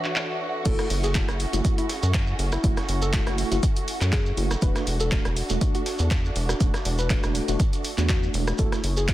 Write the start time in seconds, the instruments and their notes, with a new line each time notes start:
Already playing: analog synth pad E3 F#4 A4 B4 C#5, string section D4 F#4 E5
0.04 clap
0.16 clap
0.65 analog synth bass F#1, tine electric piano A3 E4 F#4, string section C#4, analog synth pad E4 G#4 A4, synth pluck A4, kick, closed hi-hat, crash, shaker, shekere
0.79 cross-stick, snare, closed hi-hat, shekere
0.90 analog synth bass F#1, open hi-hat, shaker
1.04 synth pluck G#4, closed hi-hat, shekere
1.15 tine electric piano A3 E4 F#4, kick, snare, clap, closed hi-hat, shekere, shaker
1.28 analog synth bass F#1, cross-stick, closed hi-hat, shekere
1.40 open hi-hat, shaker
1.53 analog synth bass F#1, tine electric piano A3 E4 F#4, closed hi-hat, shekere
1.64 tine electric piano A3 E4 F#4, kick, closed hi-hat, shaker, shekere
1.78 synth pluck E4, closed hi-hat, shekere
1.89 snare, open hi-hat, shaker
2.03 analog synth bass F#2, closed hi-hat, shekere
2.14 kick, snare, clap, closed hi-hat, shekere, shaker
2.27 shekere
2.39 analog synth bass F#1, open hi-hat, shaker
2.52 synth pluck E4, cross-stick, snare, closed hi-hat, shekere
2.64 analog synth bass F#1, tine electric piano A3 E4 F#4, analog synth pad F#4, kick, closed hi-hat, shaker, shekere
2.77 cross-stick, snare, closed hi-hat, shekere
2.89 analog synth bass F#1, open hi-hat, shaker
3.02 synth pluck A4, closed hi-hat, shekere
3.13 tine electric piano A3 E4 F#4, kick, snare, clap, closed hi-hat, shaker, shekere
3.26 analog synth bass F#1, cross-stick, snare, closed hi-hat, shekere
3.38 open hi-hat, shaker
3.51 analog synth bass F#1, tine electric piano A3 E4 F#4, closed hi-hat, shekere
3.63 kick, closed hi-hat, shaker, shekere
3.76 closed hi-hat, shekere
3.88 open hi-hat, shaker
4.01 analog synth bass F#2, clap, closed hi-hat, shekere
4.13 synth pluck G#4, kick, snare, clap, closed hi-hat, shaker, shekere
4.26 shekere
4.37 analog synth bass F#1, tine electric piano A3 E4 F#4, open hi-hat, shaker
4.51 cross-stick, snare, closed hi-hat, shekere
4.62 analog synth bass E1, tine electric piano A3 D4 F#4, analog synth pad D4, string section D4, synth pluck B4, kick, closed hi-hat, shekere, shaker
4.76 cross-stick, snare, closed hi-hat, shekere
4.87 analog synth bass E1, open hi-hat, shaker
5.00 synth pluck A4, closed hi-hat, shekere
5.11 tine electric piano A3 D4 F#4, kick, snare, clap, closed hi-hat, shaker, shekere
5.25 analog synth bass E1, cross-stick, closed hi-hat, shekere
5.37 open hi-hat, shaker
5.49 analog synth bass E1, tine electric piano A3 D4 F#4, closed hi-hat, shekere
5.61 tine electric piano A3 D4 F#4, kick, closed hi-hat, shekere, shaker
5.75 synth pluck F#4, closed hi-hat, shekere
5.86 snare, open hi-hat, shaker
5.99 analog synth bass E2, closed hi-hat, shekere
6.11 kick, snare, clap, closed hi-hat, shaker, shekere
6.25 shekere
6.36 analog synth bass E1, open hi-hat, shaker
6.49 synth pluck F#4, cross-stick, snare, closed hi-hat, shekere
6.60 analog synth bass E1, tine electric piano A3 D4 F#4, kick, closed hi-hat, shaker, shekere
6.74 cross-stick, snare, closed hi-hat, shekere
6.85 analog synth bass E1, open hi-hat, shaker
6.98 synth pluck B4, closed hi-hat, shekere
7.10 tine electric piano A3 D4 F#4, kick, snare, clap, closed hi-hat, shekere, shaker
7.23 analog synth bass E1, cross-stick, snare, closed hi-hat, shekere
7.35 open hi-hat, shaker
7.48 analog synth bass E1, tine electric piano A3 D4 F#4, closed hi-hat, shekere
7.60 kick, closed hi-hat, shekere, shaker
7.73 closed hi-hat, shekere
7.84 open hi-hat, shaker
7.97 analog synth bass E2, tine electric piano A3 D4 F#4, clap, closed hi-hat, shekere
8.09 synth pluck F#4, kick, snare, clap, closed hi-hat, shaker, shekere
8.23 shekere
8.34 analog synth bass E1, open hi-hat, shaker
8.47 cross-stick, snare, closed hi-hat, shekere
8.58 analog synth bass F#1, tine electric piano A3 E4 F#4, string section C#4, analog synth pad E4 G#4 A4, synth pluck A4, kick, closed hi-hat, shekere, shaker
8.72 cross-stick, snare, closed hi-hat, shekere
8.84 analog synth bass F#1, open hi-hat, shaker
8.88 string section F#4
8.97 synth pluck G#4, closed hi-hat, shekere
9.08 tine electric piano A3 E4 F#4, kick, snare, clap, closed hi-hat, shaker, shekere